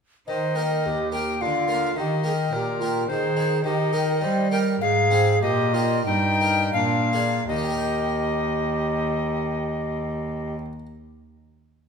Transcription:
0.27 D#3 C5 D#5
0.55 A#3 G4 A#4
0.84 D#2 G4
1.12 A#3 G4 A#4 G5
1.41 D3 F4 F5
1.68 A#3 F4 A#4
1.96 D#3 G4 D#5
2.24 A#3 G4 G#4 A#4
2.51 A#2 G4 A#4
2.80 A#3 F4 G4 A#4
3.08 D#3 G#4 C5
3.37 D#4 G#4
3.64 D#3 G4 D#5
3.93 D#4 G4 A#4
4.21 G3 C5
4.51 D#4 G4 A#4 G5
4.81 G#2 G#4 F5
5.11 C4 G#4 C5
5.42 A#2 G4 D#5
5.74 D#4 F4 G4 A#4
6.06 G2 D#4 G5
6.41 D#4 G4 A#4
6.73 A#2 D4 F5
7.13 D4 G#4 A#4
7.47 D#2 D#3 G4 D#5
7.56 D#4
7.63 G4
7.70 A#4
7.77 G5

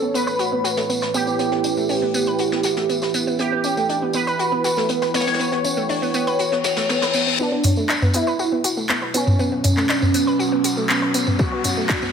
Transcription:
Already playing: A3 E4 B4 C#5
0.02 B3
0.14 B3 B4, closed hi-hat, tambourine
0.27 B4, tambourine
0.39 F#4, closed hi-hat, tambourine
0.52 B3
0.64 F#4, snare, closed hi-hat, tambourine
0.77 A3, snare, tambourine
0.89 B3, closed hi-hat, tambourine
1.01 B4, snare, tambourine
1.14 B3 G4, closed hi-hat, tambourine
1.27 B3, tambourine
1.39 B3, closed hi-hat, tambourine
1.52 B3, snare
1.64 C#4, closed hi-hat, tambourine
1.77 A3, tambourine
1.89 C#4, open hi-hat, tambourine
2.02 B3
2.14 B3, closed hi-hat, tambourine
2.26 B4, closed hi-hat, tambourine
2.39 F#4, closed hi-hat, tambourine
2.52 B3, snare
2.63 F#4, snare, closed hi-hat, tambourine
2.77 A3, snare, tambourine
2.89 B3, closed hi-hat, tambourine
3.02 B4, snare, tambourine
3.14 B3, closed hi-hat, tambourine
3.27 B3, tambourine
3.39 B3 G4 B4 F#5 G5, closed hi-hat, tambourine
3.52 B3
3.64 C#4, closed hi-hat, tambourine
3.77 A3, closed hi-hat, tambourine
3.89 D4, closed hi-hat, tambourine
4.02 B3
4.13 B3 B4, closed hi-hat, tambourine
4.27 B4, tambourine
4.39 F#4, closed hi-hat, tambourine
4.52 B3
4.64 F#4, snare, closed hi-hat, tambourine
4.76 A3, snare, tambourine
4.89 B3, closed hi-hat, tambourine
5.02 B4, snare, tambourine
5.14 B3 C#5, snare, closed hi-hat, tambourine
5.20 snare, closed hi-hat
5.27 B3, snare, closed hi-hat, tambourine
5.33 snare, closed hi-hat
5.39 B3, closed hi-hat, tambourine
5.52 B3, snare
5.64 C#4, closed hi-hat, tambourine
5.77 A3, tambourine
5.89 D4, open hi-hat, tambourine
6.02 B3, tambourine
6.14 B3, closed hi-hat, tambourine
6.27 B4, closed hi-hat, tambourine
6.39 F#4, closed hi-hat, tambourine, reverse cymbal
6.52 B3, snare
6.64 F#4, snare, closed hi-hat, tambourine
6.76 A3, snare, closed hi-hat, tambourine
6.89 B3, snare, closed hi-hat, tambourine
7.02 B4, snare, closed hi-hat, tambourine
7.14 B3, closed hi-hat, tambourine
7.27 B3, tambourine
7.39 B3 D4 F#4 B4 C#5, tambourine, riser
7.52 B3
7.63 C#4, mid tom, open hi-hat, tambourine
7.76 A3, tambourine
7.89 D4, clap, tambourine
8.02 B3, mid tom, tambourine
8.14 B3 E4, open hi-hat, tambourine
8.27 B4, tambourine
8.39 F#4, tambourine
8.52 B3
8.64 F#4, open hi-hat, tambourine
8.77 A3, tambourine
8.89 B3, clap, tambourine
9.02 B4
9.14 B3 C#4, open hi-hat, tambourine
9.27 B3, mid tom, tambourine
9.39 B3, tambourine
9.52 B3
9.64 C#4, mid tom, open hi-hat, tambourine
9.77 A3, clap, tambourine
9.89 D4, clap, tambourine
10.02 B3, mid tom, tambourine
10.14 B3, open hi-hat, tambourine
10.27 B4, tambourine
10.39 F#4, tambourine
10.52 B3
10.64 F#4, open hi-hat, tambourine
10.77 A3, tambourine
10.89 B3, clap, tambourine
11.02 B4
11.14 B3, open hi-hat, tambourine
11.27 B3, mid tom, tambourine
11.39 B3 F#4, kick, tambourine
11.52 B3
11.64 C#4, mid tom, open hi-hat, tambourine
11.77 A3
11.89 D4, kick, clap, tambourine
12.02 B3, mid tom, tambourine

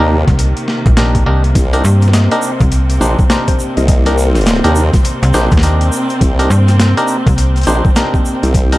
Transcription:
Already playing: C3 D#3 A#3
0.00 D#2 D4 D#4 G4 A#4
0.27 C2, kick, snare, closed hi-hat
0.39 closed hi-hat
0.57 closed hi-hat
0.68 snare
0.86 A#1, kick, closed hi-hat
0.97 D4 D#4 G4 A#4, snare, closed hi-hat
1.15 kick, closed hi-hat
1.26 C2 D4 D#4 G4 A#4
1.44 closed hi-hat
1.55 C2 C4, kick, closed hi-hat, shaker
1.73 D4 D#4 G4 A#4, closed hi-hat, shaker
1.84 G2, shaker
2.02 closed hi-hat, shaker
2.08 snare
2.13 D#5, snare, closed hi-hat, shaker
2.31 D4 D#4 G4 A#4 D#5, closed hi-hat, shaker
2.42 shaker
2.60 C2, kick, closed hi-hat, shaker
2.72 closed hi-hat, shaker
2.90 closed hi-hat, shaker
3.01 A#1 D4 D#4 G4 C5, shaker
3.19 kick, shaker
3.30 D4 D#4 G4 A#4 C5, snare, closed hi-hat, shaker
3.48 C5, kick, closed hi-hat, shaker
3.59 shaker
3.77 C2 D#5, closed hi-hat, shaker
3.88 D#5, kick, closed hi-hat, shaker
4.06 D4 D#4 G4 A#4, closed hi-hat, shaker
4.18 A#4, shaker
4.35 snare, closed hi-hat, shaker
4.41 closed hi-hat
4.46 snare, closed hi-hat, shaker
4.56 closed hi-hat
4.64 D#2 D4 D#4 G4 A#4, closed hi-hat, shaker
4.76 shaker
4.93 kick, snare, closed hi-hat, shaker
5.05 closed hi-hat, shaker
5.23 C2, closed hi-hat, shaker
5.34 A#1 D4 D#4 G4 C5, snare, shaker
5.51 D#2, kick, closed hi-hat, shaker
5.57 snare
5.62 D4 D#4 G4 A#4, closed hi-hat, shaker
5.81 closed hi-hat, shaker
5.92 shaker
6.09 closed hi-hat, shaker
6.21 C2, kick, closed hi-hat, shaker
6.39 D4 D#4 G4 A#4, closed hi-hat, shaker
6.50 G2, shaker
6.68 snare, closed hi-hat, shaker
6.80 snare, closed hi-hat, shaker
6.97 D4 D#4 G4 A#4, closed hi-hat, shaker
7.08 shaker
7.26 C2, kick, closed hi-hat, shaker
7.38 closed hi-hat, shaker
7.56 closed hi-hat, shaker
7.58 closed hi-hat
7.61 closed hi-hat
7.63 closed hi-hat
7.65 A#1 D4 D#4 G4 C5, closed hi-hat, shaker
7.85 kick, shaker
7.96 D4 D#4 G4 A#4, snare, closed hi-hat, shaker
8.14 kick, shaker
8.25 shaker
8.43 C2, closed hi-hat, shaker
8.54 kick, closed hi-hat, shaker
8.72 D4 D#4 G4 A#4, closed hi-hat, shaker

